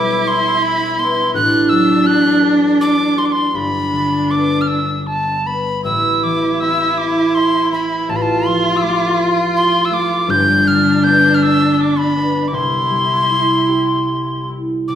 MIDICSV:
0, 0, Header, 1, 4, 480
1, 0, Start_track
1, 0, Key_signature, 0, "major"
1, 0, Tempo, 723764
1, 897, Time_signature, 3, 2, 24, 8
1, 1860, Tempo, 761421
1, 4260, Tempo, 738916
1, 8100, Tempo, 756620
1, 8580, Tempo, 797872
1, 9585, End_track
2, 0, Start_track
2, 0, Title_t, "Tin whistle"
2, 0, Program_c, 0, 75
2, 0, Note_on_c, 0, 86, 89
2, 182, Note_on_c, 0, 84, 93
2, 192, Note_off_c, 0, 86, 0
2, 416, Note_on_c, 0, 83, 110
2, 426, Note_off_c, 0, 84, 0
2, 658, Note_on_c, 0, 84, 98
2, 668, Note_off_c, 0, 83, 0
2, 888, Note_off_c, 0, 84, 0
2, 892, Note_on_c, 0, 90, 109
2, 1122, Note_on_c, 0, 88, 95
2, 1132, Note_off_c, 0, 90, 0
2, 1369, Note_on_c, 0, 90, 110
2, 1379, Note_off_c, 0, 88, 0
2, 1684, Note_off_c, 0, 90, 0
2, 1863, Note_on_c, 0, 86, 103
2, 2098, Note_on_c, 0, 84, 89
2, 2107, Note_off_c, 0, 86, 0
2, 2143, Note_on_c, 0, 86, 72
2, 2153, Note_off_c, 0, 84, 0
2, 2185, Note_on_c, 0, 84, 89
2, 2195, Note_off_c, 0, 86, 0
2, 2332, Note_on_c, 0, 83, 101
2, 2342, Note_off_c, 0, 84, 0
2, 2807, Note_on_c, 0, 86, 85
2, 2817, Note_off_c, 0, 83, 0
2, 3000, Note_on_c, 0, 89, 61
2, 3009, Note_off_c, 0, 86, 0
2, 3038, Note_on_c, 0, 88, 83
2, 3047, Note_off_c, 0, 89, 0
2, 3286, Note_on_c, 0, 81, 85
2, 3295, Note_off_c, 0, 88, 0
2, 3538, Note_on_c, 0, 83, 77
2, 3547, Note_off_c, 0, 81, 0
2, 3773, Note_off_c, 0, 83, 0
2, 3777, Note_on_c, 0, 88, 86
2, 4022, Note_on_c, 0, 86, 78
2, 4031, Note_off_c, 0, 88, 0
2, 4254, Note_on_c, 0, 88, 86
2, 4263, Note_off_c, 0, 86, 0
2, 4497, Note_on_c, 0, 86, 85
2, 4507, Note_off_c, 0, 88, 0
2, 4738, Note_on_c, 0, 84, 91
2, 4747, Note_off_c, 0, 86, 0
2, 4979, Note_off_c, 0, 84, 0
2, 4983, Note_on_c, 0, 83, 80
2, 5224, Note_on_c, 0, 81, 77
2, 5234, Note_off_c, 0, 83, 0
2, 5266, Note_on_c, 0, 83, 67
2, 5276, Note_off_c, 0, 81, 0
2, 5304, Note_on_c, 0, 81, 77
2, 5314, Note_off_c, 0, 83, 0
2, 5462, Note_on_c, 0, 84, 78
2, 5472, Note_off_c, 0, 81, 0
2, 5659, Note_on_c, 0, 88, 51
2, 5668, Note_off_c, 0, 84, 0
2, 5695, Note_on_c, 0, 86, 76
2, 5704, Note_off_c, 0, 88, 0
2, 5933, Note_off_c, 0, 86, 0
2, 6179, Note_on_c, 0, 84, 94
2, 6365, Note_on_c, 0, 88, 74
2, 6374, Note_off_c, 0, 84, 0
2, 6419, Note_on_c, 0, 86, 90
2, 6429, Note_off_c, 0, 88, 0
2, 6657, Note_on_c, 0, 91, 104
2, 6667, Note_off_c, 0, 86, 0
2, 6899, Note_on_c, 0, 89, 96
2, 6909, Note_off_c, 0, 91, 0
2, 7135, Note_on_c, 0, 91, 110
2, 7145, Note_off_c, 0, 89, 0
2, 7334, Note_on_c, 0, 89, 74
2, 7344, Note_off_c, 0, 91, 0
2, 7389, Note_on_c, 0, 88, 97
2, 7398, Note_off_c, 0, 89, 0
2, 7592, Note_off_c, 0, 88, 0
2, 7592, Note_on_c, 0, 88, 59
2, 7637, Note_on_c, 0, 86, 98
2, 7646, Note_off_c, 0, 88, 0
2, 7751, Note_on_c, 0, 83, 102
2, 7760, Note_off_c, 0, 86, 0
2, 8071, Note_on_c, 0, 86, 57
2, 8080, Note_off_c, 0, 83, 0
2, 8114, Note_on_c, 0, 84, 101
2, 8123, Note_off_c, 0, 86, 0
2, 9314, Note_off_c, 0, 84, 0
2, 9542, Note_on_c, 0, 86, 70
2, 9585, Note_off_c, 0, 86, 0
2, 9585, End_track
3, 0, Start_track
3, 0, Title_t, "Cello"
3, 0, Program_c, 1, 42
3, 0, Note_on_c, 1, 64, 98
3, 894, Note_on_c, 1, 62, 106
3, 904, Note_off_c, 1, 64, 0
3, 2328, Note_off_c, 1, 62, 0
3, 2332, Note_on_c, 1, 62, 80
3, 3511, Note_off_c, 1, 62, 0
3, 3778, Note_on_c, 1, 64, 94
3, 5230, Note_on_c, 1, 65, 110
3, 5239, Note_off_c, 1, 64, 0
3, 6645, Note_on_c, 1, 62, 105
3, 6655, Note_off_c, 1, 65, 0
3, 8100, Note_off_c, 1, 62, 0
3, 8103, Note_on_c, 1, 64, 83
3, 9285, Note_off_c, 1, 64, 0
3, 9585, End_track
4, 0, Start_track
4, 0, Title_t, "Harp"
4, 0, Program_c, 2, 46
4, 0, Note_on_c, 2, 35, 60
4, 0, Note_on_c, 2, 47, 57
4, 0, Note_on_c, 2, 55, 47
4, 0, Note_on_c, 2, 59, 57
4, 0, Note_on_c, 2, 62, 49
4, 0, Note_on_c, 2, 65, 52
4, 174, Note_off_c, 2, 62, 0
4, 176, Note_on_c, 2, 62, 54
4, 379, Note_off_c, 2, 65, 0
4, 651, Note_off_c, 2, 59, 0
4, 653, Note_on_c, 2, 59, 55
4, 889, Note_on_c, 2, 45, 66
4, 892, Note_on_c, 2, 33, 63
4, 930, Note_off_c, 2, 35, 0
4, 930, Note_off_c, 2, 47, 0
4, 930, Note_off_c, 2, 55, 0
4, 1135, Note_on_c, 2, 54, 50
4, 1369, Note_on_c, 2, 66, 60
4, 1608, Note_on_c, 2, 69, 55
4, 2024, Note_off_c, 2, 62, 0
4, 2091, Note_off_c, 2, 66, 0
4, 2093, Note_on_c, 2, 66, 52
4, 2323, Note_on_c, 2, 31, 66
4, 2326, Note_on_c, 2, 43, 58
4, 2361, Note_off_c, 2, 66, 0
4, 2363, Note_off_c, 2, 33, 0
4, 2363, Note_off_c, 2, 45, 0
4, 2363, Note_off_c, 2, 54, 0
4, 2563, Note_on_c, 2, 50, 44
4, 2671, Note_off_c, 2, 59, 0
4, 2804, Note_on_c, 2, 59, 52
4, 3005, Note_off_c, 2, 69, 0
4, 3039, Note_on_c, 2, 62, 54
4, 3532, Note_off_c, 2, 59, 0
4, 3534, Note_on_c, 2, 59, 47
4, 3776, Note_on_c, 2, 33, 59
4, 3779, Note_on_c, 2, 45, 56
4, 3813, Note_off_c, 2, 31, 0
4, 3813, Note_off_c, 2, 43, 0
4, 3813, Note_off_c, 2, 50, 0
4, 4027, Note_on_c, 2, 52, 46
4, 4256, Note_on_c, 2, 60, 52
4, 4295, Note_off_c, 2, 59, 0
4, 4495, Note_on_c, 2, 64, 53
4, 4820, Note_off_c, 2, 62, 0
4, 4979, Note_off_c, 2, 60, 0
4, 4982, Note_on_c, 2, 60, 55
4, 5210, Note_off_c, 2, 33, 0
4, 5210, Note_off_c, 2, 45, 0
4, 5216, Note_on_c, 2, 33, 58
4, 5220, Note_on_c, 2, 45, 66
4, 5257, Note_off_c, 2, 52, 0
4, 5467, Note_on_c, 2, 53, 46
4, 5506, Note_off_c, 2, 64, 0
4, 5700, Note_on_c, 2, 57, 56
4, 5931, Note_on_c, 2, 65, 55
4, 6399, Note_off_c, 2, 57, 0
4, 6402, Note_on_c, 2, 57, 56
4, 6641, Note_on_c, 2, 31, 69
4, 6646, Note_on_c, 2, 43, 70
4, 6677, Note_off_c, 2, 33, 0
4, 6677, Note_off_c, 2, 45, 0
4, 6677, Note_off_c, 2, 53, 0
4, 6883, Note_on_c, 2, 50, 53
4, 6931, Note_off_c, 2, 60, 0
4, 7129, Note_on_c, 2, 59, 64
4, 7377, Note_on_c, 2, 62, 55
4, 7569, Note_off_c, 2, 65, 0
4, 7863, Note_off_c, 2, 59, 0
4, 7865, Note_on_c, 2, 59, 52
4, 8099, Note_on_c, 2, 36, 62
4, 8104, Note_on_c, 2, 48, 72
4, 8133, Note_off_c, 2, 31, 0
4, 8133, Note_off_c, 2, 43, 0
4, 8133, Note_off_c, 2, 50, 0
4, 8137, Note_off_c, 2, 59, 0
4, 8343, Note_on_c, 2, 55, 50
4, 8553, Note_off_c, 2, 57, 0
4, 8592, Note_on_c, 2, 64, 48
4, 8825, Note_on_c, 2, 67, 52
4, 9139, Note_off_c, 2, 62, 0
4, 9309, Note_off_c, 2, 64, 0
4, 9312, Note_on_c, 2, 64, 46
4, 9542, Note_off_c, 2, 48, 0
4, 9549, Note_on_c, 2, 48, 47
4, 9573, Note_off_c, 2, 36, 0
4, 9573, Note_off_c, 2, 55, 0
4, 9585, Note_off_c, 2, 48, 0
4, 9585, Note_off_c, 2, 64, 0
4, 9585, Note_off_c, 2, 67, 0
4, 9585, End_track
0, 0, End_of_file